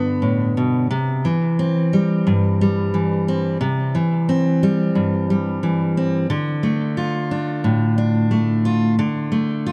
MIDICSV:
0, 0, Header, 1, 2, 480
1, 0, Start_track
1, 0, Tempo, 673401
1, 642, Time_signature, 4, 2, 24, 8
1, 6930, End_track
2, 0, Start_track
2, 0, Title_t, "Steel-string acoustic guitar"
2, 0, Program_c, 0, 25
2, 0, Note_on_c, 0, 43, 50
2, 0, Note_on_c, 0, 50, 48
2, 0, Note_on_c, 0, 59, 44
2, 0, Note_on_c, 0, 62, 47
2, 157, Note_on_c, 0, 45, 43
2, 399, Note_off_c, 0, 45, 0
2, 407, Note_on_c, 0, 47, 44
2, 614, Note_off_c, 0, 43, 0
2, 615, Note_off_c, 0, 59, 0
2, 615, Note_off_c, 0, 62, 0
2, 641, Note_off_c, 0, 50, 0
2, 643, Note_off_c, 0, 47, 0
2, 645, Note_on_c, 0, 48, 58
2, 884, Note_off_c, 0, 48, 0
2, 890, Note_on_c, 0, 52, 47
2, 1134, Note_on_c, 0, 60, 44
2, 1377, Note_on_c, 0, 55, 44
2, 1616, Note_on_c, 0, 43, 46
2, 1851, Note_off_c, 0, 55, 0
2, 1863, Note_on_c, 0, 55, 45
2, 2086, Note_off_c, 0, 52, 0
2, 2094, Note_on_c, 0, 52, 47
2, 2331, Note_off_c, 0, 60, 0
2, 2340, Note_on_c, 0, 60, 42
2, 2541, Note_off_c, 0, 52, 0
2, 2542, Note_off_c, 0, 43, 0
2, 2544, Note_off_c, 0, 60, 0
2, 2571, Note_on_c, 0, 48, 60
2, 2808, Note_off_c, 0, 48, 0
2, 2814, Note_on_c, 0, 52, 50
2, 3057, Note_on_c, 0, 60, 42
2, 3291, Note_off_c, 0, 55, 0
2, 3300, Note_on_c, 0, 55, 41
2, 3531, Note_on_c, 0, 43, 53
2, 3771, Note_off_c, 0, 55, 0
2, 3780, Note_on_c, 0, 55, 42
2, 4005, Note_off_c, 0, 52, 0
2, 4013, Note_on_c, 0, 52, 45
2, 4249, Note_off_c, 0, 60, 0
2, 4258, Note_on_c, 0, 60, 42
2, 4459, Note_off_c, 0, 43, 0
2, 4460, Note_off_c, 0, 52, 0
2, 4463, Note_off_c, 0, 60, 0
2, 4490, Note_on_c, 0, 50, 63
2, 4493, Note_off_c, 0, 55, 0
2, 4726, Note_on_c, 0, 57, 48
2, 4969, Note_on_c, 0, 65, 46
2, 5212, Note_on_c, 0, 62, 44
2, 5447, Note_on_c, 0, 45, 48
2, 5678, Note_off_c, 0, 62, 0
2, 5687, Note_on_c, 0, 62, 46
2, 5920, Note_off_c, 0, 57, 0
2, 5922, Note_on_c, 0, 57, 45
2, 6159, Note_off_c, 0, 65, 0
2, 6167, Note_on_c, 0, 65, 50
2, 6375, Note_off_c, 0, 62, 0
2, 6376, Note_off_c, 0, 65, 0
2, 6397, Note_off_c, 0, 50, 0
2, 6404, Note_off_c, 0, 45, 0
2, 6406, Note_on_c, 0, 50, 60
2, 6638, Note_off_c, 0, 57, 0
2, 6641, Note_on_c, 0, 57, 47
2, 6889, Note_on_c, 0, 65, 50
2, 6930, Note_off_c, 0, 50, 0
2, 6930, Note_off_c, 0, 57, 0
2, 6930, Note_off_c, 0, 65, 0
2, 6930, End_track
0, 0, End_of_file